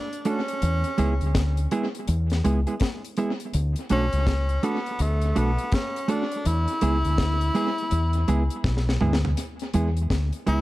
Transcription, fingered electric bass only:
0, 0, Header, 1, 2, 480
1, 0, Start_track
1, 0, Tempo, 729040
1, 410, Time_signature, 4, 2, 24, 8
1, 6986, End_track
2, 0, Start_track
2, 0, Title_t, "Fingered electric bass"
2, 0, Program_c, 0, 33
2, 414, Note_on_c, 0, 40, 109
2, 543, Note_off_c, 0, 40, 0
2, 652, Note_on_c, 0, 37, 87
2, 781, Note_off_c, 0, 37, 0
2, 802, Note_on_c, 0, 38, 78
2, 1092, Note_off_c, 0, 38, 0
2, 1373, Note_on_c, 0, 40, 105
2, 1583, Note_off_c, 0, 40, 0
2, 1614, Note_on_c, 0, 37, 97
2, 1742, Note_off_c, 0, 37, 0
2, 2334, Note_on_c, 0, 38, 106
2, 2462, Note_off_c, 0, 38, 0
2, 2574, Note_on_c, 0, 35, 92
2, 2702, Note_off_c, 0, 35, 0
2, 2721, Note_on_c, 0, 37, 86
2, 3011, Note_off_c, 0, 37, 0
2, 3292, Note_on_c, 0, 38, 98
2, 3501, Note_off_c, 0, 38, 0
2, 3534, Note_on_c, 0, 35, 90
2, 3662, Note_off_c, 0, 35, 0
2, 4254, Note_on_c, 0, 40, 114
2, 4382, Note_off_c, 0, 40, 0
2, 4494, Note_on_c, 0, 37, 85
2, 4622, Note_off_c, 0, 37, 0
2, 4643, Note_on_c, 0, 38, 82
2, 4932, Note_off_c, 0, 38, 0
2, 5214, Note_on_c, 0, 40, 104
2, 5423, Note_off_c, 0, 40, 0
2, 5452, Note_on_c, 0, 37, 89
2, 5581, Note_off_c, 0, 37, 0
2, 5693, Note_on_c, 0, 35, 91
2, 5903, Note_off_c, 0, 35, 0
2, 5935, Note_on_c, 0, 38, 88
2, 6144, Note_off_c, 0, 38, 0
2, 6417, Note_on_c, 0, 40, 97
2, 6626, Note_off_c, 0, 40, 0
2, 6655, Note_on_c, 0, 38, 77
2, 6784, Note_off_c, 0, 38, 0
2, 6898, Note_on_c, 0, 37, 77
2, 6986, Note_off_c, 0, 37, 0
2, 6986, End_track
0, 0, End_of_file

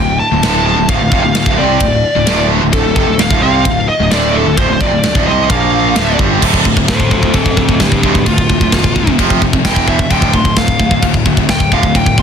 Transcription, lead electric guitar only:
0, 0, Header, 1, 2, 480
1, 0, Start_track
1, 0, Key_signature, -1, "minor"
1, 0, Tempo, 460829
1, 930, Time_signature, 4, 2, 24, 8
1, 12731, End_track
2, 0, Start_track
2, 0, Title_t, "Lead electric guitar"
2, 0, Program_c, 0, 29
2, 0, Note_on_c, 0, 79, 93
2, 178, Note_off_c, 0, 79, 0
2, 202, Note_on_c, 0, 81, 116
2, 675, Note_off_c, 0, 81, 0
2, 688, Note_on_c, 0, 81, 101
2, 912, Note_off_c, 0, 81, 0
2, 932, Note_on_c, 0, 77, 93
2, 1273, Note_off_c, 0, 77, 0
2, 1285, Note_on_c, 0, 77, 94
2, 1647, Note_off_c, 0, 77, 0
2, 1651, Note_on_c, 0, 74, 69
2, 2568, Note_off_c, 0, 74, 0
2, 2845, Note_on_c, 0, 69, 99
2, 3077, Note_off_c, 0, 69, 0
2, 3090, Note_on_c, 0, 69, 84
2, 3332, Note_on_c, 0, 77, 99
2, 3337, Note_off_c, 0, 69, 0
2, 3558, Note_off_c, 0, 77, 0
2, 3570, Note_on_c, 0, 77, 107
2, 4017, Note_off_c, 0, 77, 0
2, 4048, Note_on_c, 0, 75, 94
2, 4283, Note_off_c, 0, 75, 0
2, 4288, Note_on_c, 0, 74, 95
2, 4529, Note_on_c, 0, 69, 86
2, 4536, Note_off_c, 0, 74, 0
2, 4765, Note_off_c, 0, 69, 0
2, 4769, Note_on_c, 0, 72, 92
2, 4916, Note_off_c, 0, 72, 0
2, 4928, Note_on_c, 0, 72, 67
2, 5006, Note_off_c, 0, 72, 0
2, 5008, Note_on_c, 0, 74, 96
2, 5490, Note_off_c, 0, 74, 0
2, 5494, Note_on_c, 0, 75, 78
2, 5729, Note_off_c, 0, 75, 0
2, 5733, Note_on_c, 0, 77, 80
2, 6411, Note_off_c, 0, 77, 0
2, 7175, Note_on_c, 0, 69, 81
2, 7179, Note_on_c, 0, 72, 94
2, 7396, Note_off_c, 0, 69, 0
2, 7399, Note_off_c, 0, 72, 0
2, 7407, Note_on_c, 0, 69, 72
2, 7416, Note_on_c, 0, 72, 64
2, 7633, Note_off_c, 0, 69, 0
2, 7645, Note_off_c, 0, 72, 0
2, 7649, Note_on_c, 0, 60, 70
2, 7659, Note_on_c, 0, 69, 86
2, 7874, Note_off_c, 0, 60, 0
2, 7883, Note_off_c, 0, 69, 0
2, 7891, Note_on_c, 0, 60, 78
2, 7898, Note_on_c, 0, 69, 81
2, 8116, Note_off_c, 0, 60, 0
2, 8127, Note_off_c, 0, 69, 0
2, 8131, Note_on_c, 0, 62, 70
2, 8140, Note_on_c, 0, 67, 83
2, 8355, Note_off_c, 0, 62, 0
2, 8365, Note_off_c, 0, 67, 0
2, 8367, Note_on_c, 0, 62, 81
2, 8377, Note_on_c, 0, 67, 87
2, 8593, Note_off_c, 0, 62, 0
2, 8603, Note_on_c, 0, 65, 98
2, 8608, Note_off_c, 0, 67, 0
2, 9539, Note_off_c, 0, 65, 0
2, 10057, Note_on_c, 0, 79, 89
2, 10288, Note_off_c, 0, 79, 0
2, 10297, Note_on_c, 0, 76, 89
2, 10527, Note_off_c, 0, 76, 0
2, 10538, Note_on_c, 0, 79, 84
2, 10768, Note_off_c, 0, 79, 0
2, 10773, Note_on_c, 0, 84, 99
2, 11005, Note_off_c, 0, 84, 0
2, 11016, Note_on_c, 0, 77, 93
2, 11479, Note_off_c, 0, 77, 0
2, 11977, Note_on_c, 0, 79, 109
2, 12207, Note_off_c, 0, 79, 0
2, 12226, Note_on_c, 0, 77, 103
2, 12451, Note_off_c, 0, 77, 0
2, 12468, Note_on_c, 0, 79, 94
2, 12691, Note_off_c, 0, 79, 0
2, 12700, Note_on_c, 0, 84, 94
2, 12731, Note_off_c, 0, 84, 0
2, 12731, End_track
0, 0, End_of_file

